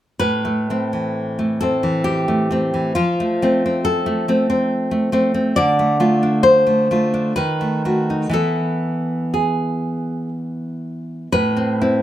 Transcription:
0.20 2.92 A2 soft
0.20 1.56 B4 medium
0.45 0.69 A3 soft
0.70 1.37 A3 soft
0.70 1.62 C4 soft
0.93 1.82 E3 soft
1.39 1.61 A3 soft
1.61 2.27 A3 soft
1.61 2.51 C4 soft
1.61 2.03 A4 medium
1.83 2.73 E3 soft
2.04 2.92 G4 medium
2.28 2.49 A3 soft
2.51 2.92 A3 soft
2.51 2.93 C4 soft
2.74 2.96 E3 soft
2.95 5.53 F3 soft
2.95 3.82 F4 medium
3.20 3.41 A3 soft
3.42 4.05 A3 soft
3.42 3.64 C4 soft
3.66 4.28 C4 soft
3.85 5.08 A4 medium
4.06 4.27 A3 soft
4.28 4.90 A3 soft
4.28 4.48 C4 soft
4.50 5.12 C4 soft
4.91 5.11 A3 soft
5.12 5.52 A3 soft
5.12 5.33 C4 soft
5.34 5.56 C4 soft
5.56 7.32 D3 medium
5.56 6.41 D5 medium
5.79 5.99 A3 soft
6.00 6.65 A3 soft
6.00 6.90 F4 soft
6.23 7.12 D4 soft
6.43 7.31 C5 medium
6.67 6.90 A3 soft
6.91 7.32 A3 soft
6.91 7.33 F4 soft
7.14 7.36 D4 soft
7.36 8.29 D#3 soft
7.36 8.29 B4 medium
7.61 7.84 A3 soft
7.85 8.29 A3 soft
7.85 8.29 F#4 soft
8.10 8.34 D#4 soft
8.29 11.26 E3 soft
8.29 11.27 B3 soft
8.29 11.28 E4 soft
8.34 9.30 A4 medium
9.34 10.28 G#4 soft
11.32 12.02 A2 soft
11.32 12.02 B4 medium
11.57 11.80 C4 soft
11.81 12.02 C4 soft
11.81 12.02 E4 soft

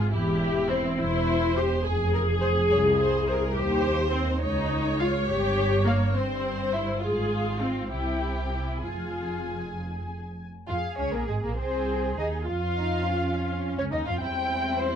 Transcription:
0.00 0.12 F4 loud
0.00 0.12 G#4 medium
0.12 0.84 E1 medium
0.12 0.84 E2 medium
0.12 0.97 E4 medium
0.12 0.68 G4 loud
0.68 0.98 C4 medium
0.68 0.83 C5 medium
0.98 1.70 E1 medium
0.98 1.71 E2 medium
0.98 1.56 E4 loud
0.98 1.83 C5 medium
1.56 1.85 G4 medium
1.56 1.69 C5 medium
1.84 2.56 F1 medium
1.84 2.56 F2 medium
1.84 3.52 G#4 loud
1.84 2.13 G#4 medium
2.14 2.22 A#4 medium
2.41 2.55 C5 medium
2.41 2.50 C5 medium
2.70 3.41 C2 medium
2.70 2.79 C#5 medium
3.00 3.27 C5 medium
3.26 3.56 A#4 medium
3.26 3.40 C5 medium
3.55 4.28 D#2 medium
3.55 4.12 G4 loud
3.55 4.43 C5 medium
4.12 4.41 C4 medium
4.12 4.26 C5 medium
4.41 5.14 C#2 medium
4.41 4.98 D#4 loud
4.41 6.12 C#5 medium
4.99 5.28 F4 medium
4.99 5.13 F5 medium
5.28 6.01 G1 medium
5.28 6.01 G2 medium
5.28 5.85 G4 loud
5.86 6.15 A#3 medium
5.86 6.00 F5 medium
6.15 6.87 G1 medium
6.15 6.87 G2 medium
6.15 6.73 C4 medium
6.15 7.02 C5 medium
6.72 7.02 E4 medium
6.72 6.86 E5 medium
7.02 7.87 G#1 medium
7.02 7.87 G#2 medium
7.02 7.91 F4 medium
7.02 7.60 G#4 medium
7.02 7.87 F5 medium
7.61 7.91 C4 medium
7.90 8.82 C2 medium
7.90 8.82 C3 medium
7.90 8.50 E4 medium
7.90 8.81 G4 medium
7.90 8.84 G5 medium
8.51 8.82 E4 medium
8.83 10.49 F1 soft
8.83 10.49 F2 soft
8.83 9.77 F4 medium
8.83 10.20 G#4 medium
8.83 10.45 G#5 medium
10.68 10.77 F2 medium
10.68 10.76 F4 medium
10.68 10.77 F4 medium
10.68 11.54 G#4 medium
10.68 10.97 F5 medium
10.97 11.13 C#2 medium
10.97 11.13 C#4 medium
10.97 11.04 C#4 medium
10.97 11.13 C#5 medium
11.12 11.28 A#1 medium
11.12 11.27 A#3 medium
11.12 11.28 A#3 medium
11.12 11.28 A#4 medium
11.27 11.43 G#1 medium
11.27 11.43 G#3 medium
11.27 11.34 G#3 medium
11.27 11.34 G#4 medium
11.42 11.58 A#1 medium
11.42 11.57 A#3 medium
11.42 11.58 A#4 medium
11.56 12.17 C2 medium
11.56 12.15 C4 medium
11.56 12.44 G#4 medium
11.56 12.16 C5 medium
12.16 12.46 D#2 medium
12.16 12.45 D#4 medium
12.16 12.26 D#5 medium
12.45 13.77 F2 medium
12.45 13.75 F4 medium
12.45 12.54 F4 medium
12.45 13.75 F5 medium
12.75 13.04 D#4 medium
13.04 14.21 C#4 medium
13.77 13.92 C#2 medium
13.77 13.92 C#4 medium
13.77 13.84 C#4 medium
13.77 13.84 C#5 medium
13.90 13.98 D#2 medium
13.90 14.06 D#4 medium
13.90 13.98 D#5 medium
14.06 14.13 F2 medium
14.06 14.12 F4 medium
14.06 14.21 F4 medium
14.06 14.21 F5 medium
14.20 14.96 E2 medium
14.20 14.96 G3 medium
14.20 14.96 C4 medium
14.20 14.96 E4 medium
14.20 14.96 C5 medium
14.20 14.79 G5 medium
14.79 14.96 C5 medium

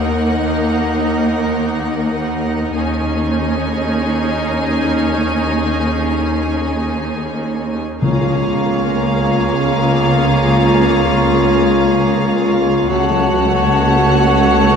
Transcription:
0.00 2.72 D#2 medium
0.00 2.72 A#3 soft
0.00 2.72 D#4 soft
0.00 2.72 A#4 soft
0.00 2.72 F#5 soft
2.76 7.78 D#2 medium
2.76 7.78 C#4 soft
2.76 7.78 D#4 soft
2.76 7.78 G#4 soft
2.76 7.78 G#5 soft
8.02 12.86 C#2 soft
8.02 12.87 C#2 soft
8.02 9.21 C#3 medium
8.02 10.45 C#3 medium
8.02 12.86 A#3 medium
8.02 12.87 A#3 soft
8.02 12.86 F4 soft
8.02 12.86 G#4 soft
8.02 12.87 C#5 soft
8.02 12.86 F5 soft
8.02 12.86 A#5 soft
8.23 10.04 G#3 soft
8.44 9.84 F4 soft
8.64 9.64 A#4 soft
8.85 11.27 G#4 soft
9.05 9.44 F5 soft
9.25 11.67 A#5 soft
9.45 11.46 F5 soft
9.65 11.07 A#4 soft
9.86 10.85 F4 soft
10.05 10.65 G#3 soft
10.46 12.88 C#3 soft
10.67 12.47 G#3 soft
10.87 12.27 F4 soft
11.08 12.07 A#4 soft
11.28 12.93 G#4 soft
11.48 11.87 F5 soft
11.68 12.93 A#5 soft
11.88 12.93 F5 soft
12.08 12.93 A#4 soft
12.29 12.93 F4 soft
12.48 12.93 G#3 soft
12.69 14.76 C#4 soft
12.89 14.76 C#2 medium
12.89 14.76 C#3 medium
12.89 14.76 A3 medium
12.89 14.76 F#4 medium
12.89 14.76 C#5 medium
12.89 14.76 F#5 medium
12.89 14.76 A5 medium
13.10 14.76 F#3 soft
13.30 13.70 F#4 soft
13.51 14.49 A4 soft
13.71 14.69 F#4 medium
13.91 14.29 F#5 soft
14.10 14.76 A5 medium
14.31 14.76 F#5 medium
14.50 14.76 A4 soft
14.70 14.76 F#4 medium

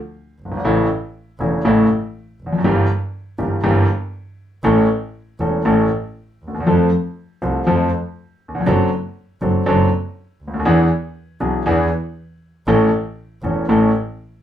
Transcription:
0.39 0.64 G1 medium
0.45 0.51 F#1 soft
0.52 0.58 G1 medium
0.57 0.64 G#1 medium
0.64 0.85 A1 medium
0.64 0.86 A1 medium
0.64 0.86 A2 medium
0.64 0.86 C#3 medium
0.64 0.86 E3 medium
0.64 0.86 A3 medium
0.64 0.86 E4 medium
1.40 1.61 E1 medium
1.40 1.61 E2 medium
1.40 1.61 C#3 soft
1.40 1.61 E3 soft
1.40 1.61 A3 soft
1.40 1.61 E4 soft
1.65 1.85 A1 medium
1.65 1.86 A1 medium
1.65 1.86 A2 medium
1.65 1.85 C#3 medium
1.65 1.86 E3 medium
1.65 1.86 A3 medium
1.65 1.86 E4 medium
2.39 2.63 F1 medium
2.46 2.52 E2 soft
2.53 2.58 F2 medium
2.58 2.64 F#2 medium
2.64 2.85 G1 medium
2.64 2.85 G2 medium
2.64 2.85 E3 medium
2.64 2.85 G3 medium
2.64 2.85 A#3 medium
2.64 2.85 G4 medium
3.38 3.60 G1 medium
3.38 3.60 G2 medium
3.38 3.60 E3 soft
3.38 3.60 G3 soft
3.38 3.60 A#3 soft
3.38 3.60 G4 medium
3.64 3.85 G1 medium
3.64 3.85 G2 medium
3.64 3.85 E3 medium
3.64 3.85 G3 medium
3.64 3.85 A#3 medium
3.64 3.85 G4 medium
4.64 4.85 A1 medium
4.64 4.85 A2 medium
4.64 4.85 E3 medium
4.64 4.85 A3 medium
4.64 4.85 C#4 medium
4.64 4.85 A4 medium
5.40 5.61 E1 medium
5.40 5.61 E1 soft
5.40 5.61 E2 soft
5.40 5.61 E3 soft
5.40 5.61 A3 soft
5.40 5.61 C#4 soft
5.40 5.61 A4 soft
5.65 5.86 A1 medium
5.65 5.87 A1 medium
5.65 5.86 A2 medium
5.65 5.86 E3 medium
5.65 5.86 A3 medium
5.65 5.86 C#4 medium
5.65 5.87 A4 medium
6.42 6.66 D#2 medium
6.48 6.54 D2 soft
6.54 6.60 D#2 soft
6.60 6.67 E2 medium
6.67 6.88 F2 medium
6.67 6.88 F3 medium
6.67 6.88 A3 medium
6.67 6.88 C4 medium
6.67 6.88 A4 medium
7.42 7.63 C2 medium
7.42 7.64 C2 medium
7.42 7.63 C3 soft
7.42 7.63 F3 soft
7.42 7.63 A3 soft
7.42 7.63 C4 soft
7.42 7.63 A4 soft
7.67 7.88 F2 medium
7.67 7.89 F2 medium
7.67 7.88 F3 medium
7.67 7.88 A3 medium
7.67 7.88 C4 medium
7.67 7.88 A4 medium
8.48 8.55 D#2 soft
8.55 8.61 E2 medium
8.61 8.67 F2 medium
8.66 8.88 F#1 medium
8.66 8.88 F#2 medium
8.66 8.88 F#3 medium
8.66 8.88 C4 medium
8.66 8.88 D4 medium
8.66 8.88 A4 medium
9.41 9.63 F#1 medium
9.41 9.63 F#2 medium
9.41 9.63 F#3 medium
9.41 9.63 C4 soft
9.41 9.63 D4 soft
9.41 9.63 A4 medium
9.66 9.88 F#1 medium
9.66 9.88 F#2 medium
9.66 9.88 F#3 medium
9.66 9.88 C4 medium
9.66 9.88 D4 medium
9.66 9.88 A4 medium
10.41 10.65 D2 medium
10.48 10.54 C#2 soft
10.54 10.60 D2 medium
10.59 10.66 D#2 medium
10.65 10.87 E2 medium
10.65 10.87 E3 medium
10.65 10.87 B3 medium
10.65 10.87 D4 medium
10.65 10.87 G#4 medium
11.40 11.62 B1 medium
11.40 11.62 B2 medium
11.40 11.62 E3 soft
11.40 11.62 B3 soft
11.40 11.62 D4 soft
11.40 11.62 G#4 medium
11.66 11.87 E2 medium
11.66 11.87 E2 loud
11.66 11.87 E3 medium
11.66 11.87 B3 medium
11.66 11.87 D4 medium
11.66 11.88 G#4 medium
12.67 12.88 A1 medium
12.67 12.88 A2 medium
12.67 12.88 E3 medium
12.67 12.88 A3 medium
12.67 12.88 C#4 medium
12.67 12.89 A4 medium
13.43 13.64 E1 medium
13.43 13.64 E2 medium
13.43 13.64 E3 soft
13.43 13.64 A3 soft
13.43 13.65 C#4 soft
13.43 13.65 A4 soft
13.68 13.90 A1 medium
13.68 13.90 A2 medium
13.68 13.90 E3 medium
13.68 13.90 A3 medium
13.68 13.90 C#4 medium
13.68 13.90 A4 medium

